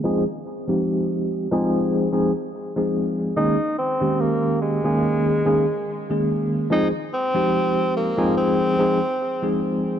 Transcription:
X:1
M:4/4
L:1/16
Q:"Swing 16ths" 1/4=72
K:Fm
V:1 name="Tenor saxophone"
z16 | E2 C2 B,2 A,8 z2 | E2 C4 B,2 C6 z2 |]
V:2 name="Tine electric piano"
[F,A,CEA] z2 [F,A,CEG]4 [F,A,CEA]3 [F,A,CEA] z2 [F,A,CEA]3 | [E,A,B,DA] z2 [E,A,B,DG]4 [E,A,B,DA]3 [E,A,B,DA] z2 [E,A,B,DA]3 | [F,A,CEA] z2 [F,A,CEG]4 [F,A,CEA]3 [F,A,CEA] z2 [F,A,CEA]3 |]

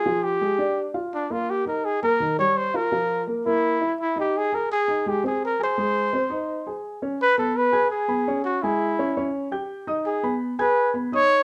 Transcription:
X:1
M:4/4
L:1/16
Q:1/4=168
K:Ab
V:1 name="Grand piano"
[F,F]4 [A,A]2 [=D=d]4 [Ff]4 [B,B]2- | [B,B]2 [Ee]4 [B,B]2 [E,E]2 [G,G]4 [Ff]2 | [F,F]4 [B,B]2 [B,B]4 [=E=e]4 [_E_e]2- | [Ee]2 [Aa]4 [Ee]2 [A,A]2 [Cc]4 [Aa]2 |
[A,A]4 [Cc]2 [Ee]4 [Aa]4 [Dd]2 | [K:C#m] z2 [B,Bb]4 [Ggg']4 [B,Bb]2 [Ccc']4 | [G,Gg]4 [Ccc']2 [Ccc']4 [=G=g=g']4 [Ddd']2- | [Ddd']2 [B,Bb]4 [Ggg']4 [B,Bb]2 [Ddd']4 |]
V:2 name="Trumpet"
A2 G6- G z3 =D2 F2 | G2 B2 A2 B4 d2 c2 B2- | B4 z2 =E6 E2 G2 | A2 B2 A4 G2 A2 B2 c2- |
c12 z4 | [K:C#m] B2 A2 B4 G6 F2 | E8 z8 | G4 z2 B4 z2 c4 |]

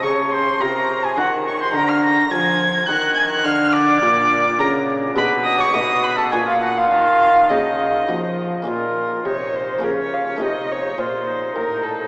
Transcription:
X:1
M:3/4
L:1/16
Q:1/4=105
K:Bbm
V:1 name="Violin"
d'2 c'2 b3 a g2 d' c' | [K:Ebm] b f' b'2 a'4 g'2 a' g' | f'2 =d'6 b2 z2 | c'2 e' d' ^d'2 =b =a _a f g f |
f4 e6 z2 | [K:Bbm] B4 d2 c2 B d f d | e2 d2 c4 B2 =A2 |]
V:2 name="Oboe"
d2 c2 B3 A G2 d c | [K:Ebm] B f b2 a3 z g2 a g | f2 =d6 B2 z2 | c2 e d ^d2 =B =A _A F G F |
F4 E6 z2 | [K:Bbm] F4 E4 D4 | E4 F2 E6 |]
V:3 name="Harpsichord"
z4 [FB]4 [FB]4 | [K:Ebm] z4 [FB]4 [EB]4 | z4 [FB]4 [FB]4 | [A,EA]4 [=A,^D]4 [B,=DF]4 |
z4 [B,EG]4 [B,EG]4 | [K:Bbm] [B,DF]8 [B,DF]4 | [=A,EF]12 |]
V:4 name="Harpsichord" clef=bass
D,4 C,4 E,4 | [K:Ebm] =D,4 F,4 E,4 | =D,4 B,,4 _D,4 | C,4 =B,,4 _B,,4 |
E,4 D,4 F,4 | [K:Bbm] B,,4 C,4 D,4 | C,4 B,,4 =A,,4 |]
V:5 name="Cello" clef=bass
D,4 C,4 E,4 | [K:Ebm] =D,4 F,4 E,4 | =D,4 B,,4 _D,4 | C,4 =B,,4 _B,,4 |
E,4 D,4 F,4 | [K:Bbm] B,,4 C,4 D,4 | C,4 B,,4 =A,,4 |]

